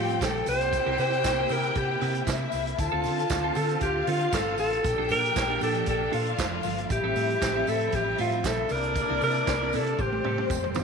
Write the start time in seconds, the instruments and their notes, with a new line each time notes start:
Already playing: fingered electric bass A2, string section F3 G3 C4, clean electric guitar C4, alto saxophone F4, violin section G4 G5
0.09 muted clean electric guitar stroke, closed hi-hat
0.21 fingered electric bass A#1, alto saxophone A4, muted clean electric guitar stroke, kick, snare, clap, closed hi-hat, tambourine
0.35 muted clean electric guitar stroke
0.46 fingered electric bass C2, string section C3 A#3 E4, violin section G4 G5, alto saxophone C5, open hi-hat, tambourine
0.61 muted clean electric guitar stroke, closed hi-hat
0.73 muted clean electric guitar stroke, kick, closed hi-hat, tambourine
0.86 fingered electric bass C2, clean electric guitar C4 E4 A#4
0.98 fingered electric bass C3, clean electric guitar C4 E4 A#4, alto saxophone C5, open hi-hat, tambourine
1.13 muted clean electric guitar stroke, closed hi-hat
1.24 fingered electric bass C2, kick, snare, clap, closed hi-hat, tambourine
1.39 clean electric guitar C4 E4 A#4
1.49 fingered electric bass C3, clean electric guitar C4 E4 A#4, alto saxophone A#4, open hi-hat, tambourine
1.63 muted clean electric guitar stroke, closed hi-hat
1.75 fingered electric bass C3, alto saxophone G4, muted clean electric guitar stroke, kick, closed hi-hat
1.90 muted clean electric guitar stroke
2.01 fingered electric bass C3, clean electric guitar C4 E4 A#4, open hi-hat
2.15 muted clean electric guitar stroke, closed hi-hat
2.27 fingered electric bass C3, violin section E4 E5, muted clean electric guitar stroke, kick, snare, clap, closed hi-hat, tambourine
2.41 muted clean electric guitar stroke
2.52 fingered electric bass C2, open hi-hat, tambourine
2.66 muted clean electric guitar stroke, closed hi-hat
2.79 fingered electric bass D2, string section D3 C4 F4, alto saxophone F4, violin section A4 A5, muted clean electric guitar stroke, kick, closed hi-hat, tambourine
2.92 fingered electric bass D2, clean electric guitar C4 F4 A4
3.04 fingered electric bass D3, clean electric guitar C4 F4 A4, open hi-hat, tambourine
3.17 muted clean electric guitar stroke, closed hi-hat
3.30 fingered electric bass D2, muted clean electric guitar stroke, kick, snare, clap, closed hi-hat, tambourine
3.43 clean electric guitar C4 F4 A4
3.55 fingered electric bass D3, clean electric guitar C4 F4 A4, alto saxophone A4, open hi-hat, tambourine
3.69 muted clean electric guitar stroke, closed hi-hat
3.81 fingered electric bass D2, violin section F4 F5, alto saxophone G4, muted clean electric guitar stroke, kick, closed hi-hat, tambourine
3.96 muted clean electric guitar stroke
4.07 fingered electric bass D3, clean electric guitar C4 F4 A4, alto saxophone F4, open hi-hat
4.21 muted clean electric guitar stroke, closed hi-hat
4.33 fingered electric bass G1, alto saxophone A4, muted clean electric guitar stroke, kick, snare, clap, closed hi-hat, tambourine
4.47 muted clean electric guitar stroke
4.58 fingered electric bass A1, alto saxophone A4, open hi-hat, tambourine
4.72 muted clean electric guitar stroke, closed hi-hat
4.84 fingered electric bass A#1, string section F3 A#3 D4, violin section G4 G5, muted clean electric guitar stroke, kick, closed hi-hat, tambourine
4.98 fingered electric bass A#1, clean electric guitar D4 F4 A4
5.09 fingered electric bass A#2, clean electric guitar D4 F4 A4, alto saxophone A#4, open hi-hat, tambourine
5.23 muted clean electric guitar stroke, closed hi-hat
5.35 fingered electric bass A#1, muted clean electric guitar stroke, kick, snare, clap, closed hi-hat, tambourine
5.49 clean electric guitar D4 F4 A4
5.61 fingered electric bass A#2, clean electric guitar D4 F4 A4, alto saxophone A4, open hi-hat, tambourine
5.75 muted clean electric guitar stroke, closed hi-hat
5.86 fingered electric bass A#1, alto saxophone A4, muted clean electric guitar stroke, kick, closed hi-hat, tambourine
6.00 muted clean electric guitar stroke
6.12 fingered electric bass A#2, clean electric guitar D4 F4 A4, violin section F4 F5, open hi-hat
6.26 muted clean electric guitar stroke, closed hi-hat
6.39 fingered electric bass F1, muted clean electric guitar stroke, kick, snare, clap, closed hi-hat, tambourine
6.52 muted clean electric guitar stroke
6.63 fingered electric bass G1, open hi-hat, tambourine
6.78 muted clean electric guitar stroke, closed hi-hat
6.90 fingered electric bass A1, string section G3 C4, violin section E4 E5, alto saxophone G4, muted clean electric guitar stroke, kick, closed hi-hat, tambourine
7.04 fingered electric bass A1, clean electric guitar C4 G4 A4
7.16 fingered electric bass A2, clean electric guitar C4 G4 A4, open hi-hat, tambourine
7.30 muted clean electric guitar stroke, closed hi-hat
7.42 fingered electric bass A1, muted clean electric guitar stroke, kick, snare, clap, closed hi-hat, tambourine
7.56 clean electric guitar C4 G4 A4
7.67 fingered electric bass A2, clean electric guitar C4 G4 A4, alto saxophone A4, open hi-hat, tambourine
7.80 muted clean electric guitar stroke, closed hi-hat
7.92 fingered electric bass A1, alto saxophone G4, muted clean electric guitar stroke, kick, closed hi-hat, tambourine
8.07 muted clean electric guitar stroke
8.18 fingered electric bass A2, clean electric guitar C4 G4 A4, alto saxophone F4, open hi-hat, tambourine
8.32 muted clean electric guitar stroke, closed hi-hat
8.44 fingered electric bass A#1, alto saxophone A4, muted clean electric guitar stroke, kick, snare, clap, closed hi-hat, tambourine
8.60 muted clean electric guitar stroke
8.69 fingered electric bass C2, string section C3 A#3 E4, violin section D4 D5, alto saxophone A#4, open hi-hat, tambourine
8.84 muted clean electric guitar stroke, closed hi-hat
8.95 muted clean electric guitar stroke, kick, closed hi-hat, tambourine
9.10 fingered electric bass C2, clean electric guitar C4 E4 A#4
9.21 fingered electric bass C3, clean electric guitar C4 E4 A#4, alto saxophone A#4, open hi-hat, tambourine
9.36 muted clean electric guitar stroke, closed hi-hat
9.47 fingered electric bass C2, muted clean electric guitar stroke, kick, snare, clap, closed hi-hat, tambourine
9.61 clean electric guitar C4 E4 A#4
9.73 fingered electric bass C3, clean electric guitar C4 E4 A#4, alto saxophone A4, open hi-hat, tambourine
9.86 muted clean electric guitar stroke, closed hi-hat
9.99 fingered electric bass A1, string section G3 A3 C4, violin section C4 C5, alto saxophone G4, kick, high tom, tambourine
10.12 muted clean electric guitar stroke, high tom
10.24 fingered electric bass A2, clean electric guitar C4 G4 A4, mid tom
10.38 muted clean electric guitar stroke, mid tom
10.50 fingered electric bass F1, muted clean electric guitar stroke, kick, mid tom, tambourine
10.64 muted clean electric guitar stroke, mid tom
10.74 fingered electric bass G1, floor tom, tambourine